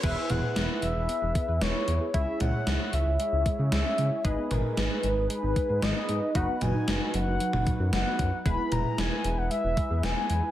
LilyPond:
<<
  \new Staff \with { instrumentName = "Soft synth lead" } { \time 4/4 \key e \major \tempo 4 = 114 e''8 fis''4 e''4. cis''4 | e''8 fis''4 e''4. e''4 | dis''8 ais'8 b'4 b'4 dis''4 | fis''8 gis''4 fis''4. fis''4 |
b''8 ais''8 gis''8. fis''16 e''4 gis''4 | }
  \new Staff \with { instrumentName = "Analog polysynth" } { \time 4/4 \key e \major <e' gis' b'>1 | <e' gis' cis''>1 | <dis' gis' b'>1 | <dis' fis' b'>1 |
<e' gis' b'>1 | }
  \new Staff \with { instrumentName = "Synth pluck" } { \time 4/4 \key e \major b16 e'16 b16 gis'16 b16 b'16 b16 r16 b16 gis'16 b16 b'16 b16 e'16 b16 gis'16 | gis16 cis'16 gis16 e'16 gis16 gis'16 gis16 r16 gis16 e'16 gis16 gis'16 gis16 cis'16 gis16 e'16 | gis16 b16 gis16 dis'16 gis16 gis'16 gis16 r16 gis16 dis'16 gis16 gis'16 gis16 b16 gis16 dis'16 | fis16 b16 fis16 dis'16 fis16 fis'16 fis16 r16 fis16 dis'16 fis16 fis'16 fis16 b16 fis16 dis'16 |
gis16 b16 gis16 e'16 gis16 gis'16 gis16 r16 gis16 e'16 gis16 gis'16 gis16 b16 gis16 e'16 | }
  \new Staff \with { instrumentName = "Analog synth bass" } { \clef bass \time 4/4 \key e \major e,,16 r16 e,,16 r16 e,,16 r16 e,,16 e,,16 r16 e,,16 r16 e,16 e,,16 r16 e,16 r16 | cis,16 r16 cis,16 r16 cis,16 r16 cis,16 cis,16 r16 cis,16 r16 cis16 cis,16 r16 cis16 r16 | gis,,16 r16 gis,,16 r16 gis,,16 r16 gis,,16 gis,,16 r16 gis,,16 r16 gis,16 gis,,16 r16 gis,16 r16 | fis,,16 r16 fis,,16 r16 fis,,16 r16 fis,,16 fis,,16 r16 fis,,16 r16 fis,16 fis,,16 r16 fis,16 r16 |
e,,16 r16 e,,16 r16 e,,16 r16 e,,16 e,,16 r16 e,,16 r16 e,16 e,,16 r16 e,16 r16 | }
  \new DrumStaff \with { instrumentName = "Drums" } \drummode { \time 4/4 <cymc hh bd>8 <hh toml>8 <hh sn>8 hh8 hh8 <hh bd>8 <hh sn>8 hh8 | <hh bd>8 <hh toml>8 <hh sn>8 hh8 hh8 <hh bd>8 <hh sn>8 hh8 | <hh bd>8 <hh toml>8 <hh sn>8 hh8 hh8 <hh bd>8 <hh sn>8 hh8 | <hh bd>8 <hh toml>8 <hh sn>8 hh8 hh16 toml16 <hh bd>8 <hh sn>8 <hh bd>8 |
<hh bd>8 <hh toml>8 <hh sn>8 hh8 hh8 <hh bd>8 <hh sn>8 hh8 | }
>>